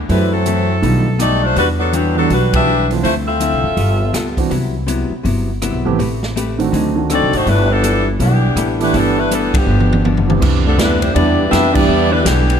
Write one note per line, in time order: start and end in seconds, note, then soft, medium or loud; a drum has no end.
0.09 0.33 F#2 soft
0.09 0.79 F#2 medium
0.09 0.34 E3 soft
0.09 0.64 F#3 soft
0.09 0.31 G3 medium
0.09 0.64 A3 soft
0.09 0.34 A3 soft
0.09 0.64 C4 soft
0.09 0.30 C4 medium
0.09 0.35 C4 soft
0.09 0.30 E4 medium
0.09 0.65 E4 soft
0.09 0.65 A4 medium
0.09 0.31 B4 medium
0.09 kick soft
0.09 open hi-hat soft
0.31 0.82 F#3 medium
0.31 0.82 C4 medium
0.31 0.82 E4 medium
0.31 1.19 A4 medium
0.46 0.70 F#2 medium
0.46 0.71 E3 medium
0.46 0.71 A3 medium
0.46 0.71 C4 medium
0.46 closed hi-hat medium
0.82 1.52 B1 medium
0.82 1.07 B2 soft
0.82 1.03 D#3 medium
0.82 1.08 G3 soft
0.82 1.03 A3 medium
0.82 1.08 A3 medium
0.82 1.04 B3 soft
0.82 1.04 D4 soft
0.82 1.09 D#4 medium
0.82 1.04 F4 medium
0.82 kick soft
0.82 open hi-hat soft
1.19 1.43 B2 medium
1.19 1.44 G3 medium
1.19 1.41 A3 medium
1.19 1.44 A3 medium
1.19 1.41 D#4 medium
1.19 1.45 D#4 medium
1.19 1.41 G4 medium
1.19 1.41 D5 medium
1.19 cross-stick medium
1.19 closed hi-hat soft
1.43 1.57 A3 medium
1.43 1.56 D4 medium
1.43 1.56 F4 medium
1.43 1.57 C5 medium
1.56 2.26 E2 medium
1.56 1.81 E3 soft
1.56 1.67 G3 medium
1.56 1.81 G3 soft
1.56 1.67 D4 medium
1.56 1.82 D4 soft
1.56 1.67 F#4 medium
1.56 1.82 F#4 soft
1.56 1.67 B4 medium
1.56 kick soft
1.56 open hi-hat soft
1.78 1.92 F#3 medium
1.78 1.91 B3 medium
1.78 1.91 D4 medium
1.78 1.92 A4 medium
1.93 2.17 D3 medium
1.93 2.17 E3 medium
1.93 2.16 F#3 medium
1.93 2.18 G3 medium
1.93 2.15 B3 medium
1.93 2.18 D4 medium
1.93 2.18 F#4 medium
1.93 2.17 G4 medium
1.93 closed hi-hat soft
2.15 2.28 E3 medium
2.15 2.29 F#3 medium
2.15 2.28 G3 medium
2.15 2.29 B3 medium
2.15 2.28 B3 medium
2.15 2.29 D4 medium
2.15 2.29 F#4 medium
2.15 2.29 A4 medium
2.29 3.00 B1 medium
2.29 2.54 E3 soft
2.29 2.55 G3 soft
2.29 2.52 G3 medium
2.29 2.55 D4 soft
2.29 2.52 D4 medium
2.29 2.52 F#4 medium
2.29 2.55 F#4 medium
2.29 2.53 B4 medium
2.29 kick soft
2.29 open hi-hat soft
2.52 2.65 E3 medium
2.52 2.65 G3 medium
2.52 2.65 B3 medium
2.52 2.87 D4 medium
2.52 2.66 D4 medium
2.52 2.66 F#4 medium
2.52 2.88 G4 medium
2.52 2.88 B4 medium
2.52 2.87 E5 loud
2.52 kick medium
2.52 ride medium
2.66 2.91 E3 medium
2.66 2.91 G3 medium
2.66 2.91 D4 medium
2.66 2.92 F#4 medium
2.90 3.02 E3 medium
2.90 3.02 A3 soft
2.90 3.03 C4 medium
2.90 3.03 D4 medium
2.90 3.03 F4 medium
2.90 open hi-hat soft
3.03 3.49 D2 medium
3.03 3.28 D3 soft
3.03 3.29 F3 soft
3.03 3.13 A3 medium
3.03 3.29 C4 soft
3.03 3.14 E4 medium
3.03 3.29 E4 soft
3.03 3.14 F4 medium
3.03 3.14 C5 medium
3.03 kick soft
3.03 open hi-hat soft
3.25 3.73 C4 medium
3.25 4.32 F4 medium
3.25 4.33 A4 medium
3.25 4.33 E5 loud
3.40 3.64 D3 medium
3.40 3.65 F3 medium
3.40 3.65 C4 medium
3.40 3.65 E4 medium
3.40 closed hi-hat medium
3.52 3.63 C2 medium
3.64 3.76 F#1 medium
3.77 4.11 G1 medium
3.77 4.02 G3 medium
3.77 4.02 B3 soft
3.77 4.02 F4 medium
3.77 4.03 A4 medium
3.77 kick soft
3.77 open hi-hat soft
4.13 4.48 C#2 medium
4.13 4.39 G3 medium
4.13 4.39 B3 medium
4.13 4.39 F4 medium
4.13 4.40 A4 medium
4.13 cross-stick medium
4.13 snare soft
4.13 closed hi-hat medium
4.37 4.49 E3 medium
4.37 4.50 B3 soft
4.37 4.50 C4 medium
4.37 4.50 D4 medium
4.37 4.50 F#4 medium
4.37 kick soft
4.37 open hi-hat soft
4.50 5.07 C2 medium
4.50 4.75 C3 soft
4.50 4.75 F#3 soft
4.50 4.76 B3 soft
4.50 4.76 E4 soft
4.50 kick soft
4.50 open hi-hat soft
4.87 5.12 C3 medium
4.87 5.12 F#3 medium
4.87 5.12 B3 medium
4.87 5.13 E4 medium
4.87 closed hi-hat medium
5.10 muted upright bass stroke soft
5.23 5.70 G1 medium
5.23 5.48 C3 medium
5.23 5.49 F#3 soft
5.23 5.50 B3 medium
5.23 5.50 E4 medium
5.23 kick soft
5.23 open hi-hat soft
5.62 5.86 C3 medium
5.62 5.87 F#3 medium
5.62 5.87 B3 medium
5.62 5.87 E4 medium
5.62 cross-stick medium
5.62 closed hi-hat medium
5.73 5.85 B1 medium
5.85 5.98 G#1 medium
5.85 5.97 E3 medium
5.85 5.97 A3 medium
5.85 5.97 B3 medium
5.85 5.98 C4 medium
5.85 5.98 G4 medium
5.99 6.69 A1 medium
5.99 6.23 A3 soft
5.99 6.23 C4 medium
5.99 6.24 G4 medium
5.99 6.24 B4 medium
5.99 kick soft
5.99 open hi-hat soft
6.23 snare soft
6.36 6.60 A3 medium
6.36 6.60 C4 medium
6.36 6.61 G4 medium
6.36 6.61 B4 medium
6.36 closed hi-hat soft
6.59 6.93 D#3 medium
6.59 6.93 A3 medium
6.59 6.93 C4 medium
6.59 6.94 D4 medium
6.59 6.94 F#4 medium
6.59 open hi-hat soft
6.72 7.18 D2 medium
6.72 6.97 D3 soft
6.72 6.97 F#3 medium
6.72 6.98 C4 medium
6.72 6.98 D#4 medium
6.72 kick soft
6.72 open hi-hat soft
6.96 7.43 D#3 medium
6.96 7.43 A3 soft
6.96 7.44 C4 soft
6.96 7.44 D4 soft
6.96 7.44 F#4 medium
7.10 7.34 D3 soft
7.10 7.35 F#3 medium
7.10 7.32 C4 medium
7.10 7.35 C4 medium
7.10 7.35 D#4 medium
7.10 7.32 F#4 medium
7.10 7.32 A4 medium
7.10 7.32 D5 medium
7.10 cross-stick medium
7.10 closed hi-hat medium
7.21 7.32 C2 medium
7.33 7.45 G#1 medium
7.33 7.47 A3 medium
7.33 7.47 D#4 medium
7.33 7.47 F#4 medium
7.33 7.47 C5 medium
7.33 open hi-hat soft
7.46 8.16 G1 medium
7.46 7.71 G3 soft
7.46 7.70 A3 medium
7.46 7.71 B3 soft
7.46 7.69 D4 medium
7.46 7.71 E4 soft
7.46 7.70 E4 medium
7.46 7.72 A4 soft
7.46 7.70 B4 medium
7.46 kick soft
7.46 open hi-hat soft
7.70 8.07 E3 medium
7.70 8.06 B3 medium
7.70 8.06 D4 medium
7.70 8.06 A4 medium
7.83 8.07 G3 medium
7.83 8.08 B3 medium
7.83 8.08 E4 medium
7.83 8.08 A4 medium
7.83 closed hi-hat medium
8.19 8.54 B1 medium
8.19 8.76 E3 medium
8.19 8.44 G3 soft
8.19 8.44 B3 soft
8.19 8.76 B3 medium
8.19 8.76 D4 medium
8.19 8.45 E4 medium
8.19 8.76 G4 medium
8.19 8.45 A4 medium
8.19 kick soft
8.19 open hi-hat soft
8.56 8.90 A1 medium
8.56 8.81 G3 medium
8.56 8.81 B3 medium
8.56 8.82 E4 medium
8.56 8.82 A4 medium
8.56 cross-stick medium
8.56 closed hi-hat soft
8.79 9.27 E3 medium
8.79 9.27 A3 medium
8.79 8.94 A3 medium
8.79 9.28 B3 medium
8.79 9.28 D4 medium
8.79 8.94 D4 medium
8.79 8.94 E4 medium
8.79 9.28 G4 medium
8.79 8.94 B4 medium
8.79 open hi-hat soft
8.93 9.63 G1 medium
8.93 9.18 E3 medium
8.93 9.18 G3 soft
8.93 9.18 B3 soft
8.93 9.18 B3 medium
8.93 9.17 D4 medium
8.93 9.19 E4 soft
8.93 9.19 A4 soft
8.93 9.18 A4 medium
8.93 kick soft
8.93 open hi-hat soft
9.17 9.30 A3 medium
9.17 9.31 D4 medium
9.17 9.31 E4 medium
9.17 9.31 B4 medium
9.31 9.55 E3 medium
9.31 9.55 G3 medium
9.31 9.55 B3 medium
9.31 9.54 B3 medium
9.31 9.54 D4 medium
9.31 9.56 E4 medium
9.31 9.56 A4 medium
9.31 9.55 A4 medium
9.31 closed hi-hat medium
9.53 10.04 B2 medium
9.53 10.04 D3 medium
9.53 10.05 F3 medium
9.53 10.04 G3 medium
9.53 10.05 B3 medium
9.53 10.05 D4 medium
9.53 10.05 G4 medium
9.53 kick medium
9.53 ride medium
9.67 10.37 G1 medium
9.67 9.92 G2 soft
9.67 9.92 F3 soft
9.67 9.93 B3 soft
9.67 9.93 D4 soft
9.80 high tom soft
9.93 high tom medium
10.04 10.29 G2 medium
10.04 10.29 F3 medium
10.04 10.29 B3 medium
10.04 10.30 D4 medium
10.04 high tom medium
10.17 floor tom medium
10.27 10.75 E3 medium
10.27 10.75 B3 medium
10.27 10.75 C4 medium
10.27 10.75 D4 medium
10.27 10.76 G4 medium
10.27 floor tom medium
10.40 10.77 C2 medium
10.40 10.65 C3 soft
10.40 10.66 E3 medium
10.40 10.66 B3 medium
10.40 10.67 D4 medium
10.40 kick medium
10.40 crash medium
10.64 10.78 F3 medium
10.64 10.76 A3 medium
10.64 10.78 B3 medium
10.64 10.78 D4 medium
10.64 10.78 A4 medium
10.77 11.14 D2 medium
10.77 11.02 C3 medium
10.77 10.98 E3 medium
10.77 11.03 E3 medium
10.77 10.99 G3 medium
10.77 11.00 G3 medium
10.77 10.99 B3 medium
10.77 11.03 B3 medium
10.77 10.99 D4 medium
10.77 11.04 D4 medium
10.77 11.00 E4 medium
10.77 11.01 B4 medium
10.77 kick soft
10.77 snare medium
10.77 hi-hat pedal medium
10.77 ride medium
10.99 11.14 E3 medium
10.99 11.11 G3 medium
10.99 11.14 G3 medium
10.99 11.14 C4 medium
10.99 11.14 D4 medium
10.99 11.13 E4 medium
10.99 11.14 C5 medium
10.99 ride soft
11.12 11.51 E2 medium
11.12 11.39 C3 soft
11.12 11.47 G3 medium
11.12 11.47 B3 medium
11.12 11.49 B3 medium
11.12 11.48 D4 medium
11.12 11.49 E4 medium
11.12 11.48 G4 medium
11.12 11.49 D5 medium
11.12 kick soft
11.12 ride medium
11.16 11.40 E3 soft
11.16 11.40 B3 soft
11.16 11.41 D4 soft
11.48 11.76 C3 medium
11.48 11.76 E3 medium
11.48 11.70 G3 medium
11.48 11.71 B3 medium
11.48 11.72 D4 medium
11.48 11.71 E4 medium
11.48 11.71 G4 medium
11.48 11.72 B4 medium
11.48 11.72 E5 loud
11.52 11.87 F2 medium
11.52 11.76 B3 medium
11.52 11.77 D4 medium
11.52 kick soft
11.52 snare medium
11.52 hi-hat pedal medium
11.52 ride medium
11.71 12.23 E3 medium
11.71 12.10 G3 medium
11.71 12.10 B3 medium
11.71 12.11 B3 medium
11.71 12.10 D4 medium
11.71 12.10 E4 medium
11.71 12.10 G4 medium
11.71 12.10 D5 loud
11.71 crash medium
11.76 12.23 G3 medium
11.76 12.23 B3 medium
11.76 12.23 D4 medium
11.76 12.24 G4 medium
11.76 kick medium
11.88 12.24 E2 medium
11.88 12.13 E3 soft
11.88 12.13 B3 soft
11.88 12.14 D4 medium
11.88 12.14 G4 medium
12.11 12.22 D3 medium
12.11 12.25 G3 medium
12.11 12.22 G3 medium
12.11 12.25 B3 medium
12.11 12.23 D4 medium
12.11 12.25 E4 medium
12.11 12.25 B4 medium
12.23 12.60 B1 medium
12.23 12.60 B2 medium
12.23 12.60 D3 medium
12.23 12.60 E3 medium
12.23 12.50 E3 medium
12.23 12.60 G3 medium
12.23 12.60 B3 medium
12.23 12.50 B3 medium
12.23 12.60 D4 medium
12.23 12.50 D4 medium
12.23 12.60 G4 medium
12.23 kick soft
12.23 snare medium
12.23 hi-hat pedal medium
12.23 ride medium
12.27 12.51 G4 medium
12.50 ride soft